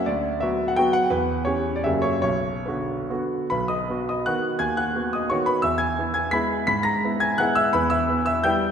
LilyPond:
<<
  \new Staff \with { instrumentName = "Grand piano" } { \time 3/4 \key b \minor \tempo 4 = 169 d''4 e''8. fis''16 g''8 fis''8 | b'4 cis''8. d''16 e''8 cis''8 | cis''4 b'4 r4 | \key b \major <b' b''>8 <dis'' dis'''>4 <dis'' dis'''>8 <fis'' fis'''>4 |
<gis'' gis'''>8 <fis'' fis'''>4 <dis'' dis'''>8 <cis'' cis'''>8 <b' b''>8 | <e'' e'''>8 <gis'' gis'''>4 <gis'' gis'''>8 <b'' b'''>4 | <b'' b'''>8 <ais'' ais'''>4 <gis'' gis'''>8 <fis'' fis'''>8 <e'' e'''>8 | \key e \dorian <b' b''>8 <e'' e'''>4 <e'' e'''>8 <g'' g'''>4 | }
  \new Staff \with { instrumentName = "Grand piano" } { \time 3/4 \key b \minor d,4 <fis b fis'>4 <fis b fis'>4 | e,4 <e cis' g'>4 <fis, cis ais g'>4 | b,,4 <d b fis'>4 <d b fis'>4 | \key b \major b,,4 <b fis'>4 <dis b fis'>4 |
dis,4 <b fis'>4 <dis b fis'>4 | e,4 <b e'>4 <gis b e'>4 | gis,4 <b e'>4 <gis b e'>4 | \key e \dorian e,4 <b e'>4 <g b e'>4 | }
>>